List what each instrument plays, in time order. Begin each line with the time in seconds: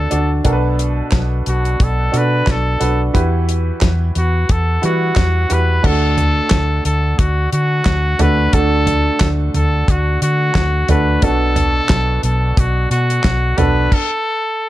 Already playing: upright piano D4 F#4 A4 D5, trumpet A4
0.10 fingered electric bass D2, upright piano D4 F#4 A4 D5, closed hi-hat
0.44 fingered electric bass B1, upright piano B2 D4 F#4 A4 A#4, kick, closed hi-hat
0.52 upright piano B4
0.79 closed hi-hat
1.12 fingered electric bass B1, kick, snare, clap, closed hi-hat
1.46 fingered electric bass B1, trumpet F#4, closed hi-hat
1.65 closed hi-hat
1.80 fingered electric bass B1, trumpet A4, kick, closed hi-hat
2.12 fingered electric bass B2, upright piano D4 F#4 A4 D5, closed hi-hat
2.17 trumpet B4
2.47 fingered electric bass B1, kick, snare, clap, closed hi-hat
2.51 trumpet A4
2.80 fingered electric bass B1, upright piano D4 F#4 A4 B4, closed hi-hat
3.13 fingered electric bass E2, upright piano E3 E4 F#4 G4 B4, kick, closed hi-hat
3.49 closed hi-hat
3.81 fingered electric bass E2, kick, snare, clap, closed hi-hat
4.15 fingered electric bass E2, trumpet F#4, closed hi-hat
4.49 fingered electric bass E2, trumpet A4, kick, closed hi-hat
4.82 fingered electric bass E3, upright piano G3 E4 F#4 B4, trumpet F#4, closed hi-hat
5.16 fingered electric bass E2, kick, snare, clap, closed hi-hat
5.49 fingered electric bass E2, upright piano E4 F#4 G4 B4, closed hi-hat
5.53 trumpet B4
5.83 fingered electric bass D2, upright piano D3 A3 D4 F#4 A4, trumpet A4, kick, crash
6.17 closed hi-hat, floor tom
6.50 fingered electric bass D2, kick, snare, clap, closed hi-hat
6.85 fingered electric bass D2, trumpet A4, closed hi-hat
7.19 fingered electric bass D2, trumpet F#4, kick, closed hi-hat
7.53 fingered electric bass D3, trumpet F#4, closed hi-hat
7.85 fingered electric bass D2, kick, snare, clap, closed hi-hat
8.19 fingered electric bass D2, upright piano A3 D4 F#4 A4, trumpet B4, closed hi-hat, floor tom
8.53 fingered electric bass D2, upright piano D3 A3 D4 F#4 A4, trumpet A4, kick, closed hi-hat
8.87 closed hi-hat, floor tom
9.20 fingered electric bass D2, kick, snare, clap, closed hi-hat
9.54 fingered electric bass D2, trumpet A4, closed hi-hat, floor tom
9.88 fingered electric bass D2, trumpet F#4, kick, closed hi-hat
10.22 fingered electric bass D3, trumpet F#4, closed hi-hat
10.55 fingered electric bass D2, kick, snare, clap, closed hi-hat
10.88 fingered electric bass D2, upright piano A3 D4 F#4 A4, trumpet B4, closed hi-hat, floor tom
11.22 fingered electric bass B1, upright piano B2 B3 D4 F#4 A4, trumpet A4, kick, closed hi-hat
11.56 closed hi-hat, floor tom
11.89 fingered electric bass B1, kick, snare, clap, closed hi-hat
12.23 fingered electric bass B1, trumpet A4, closed hi-hat
12.57 fingered electric bass B1, trumpet F#4, kick, closed hi-hat
12.90 fingered electric bass B2, trumpet F#4, closed hi-hat
13.10 closed hi-hat
13.24 fingered electric bass B1, kick, snare, clap, closed hi-hat
13.57 fingered electric bass B1, upright piano B3 D4 F#4 A4, trumpet B4, closed hi-hat, floor tom
13.92 trumpet A4, kick, crash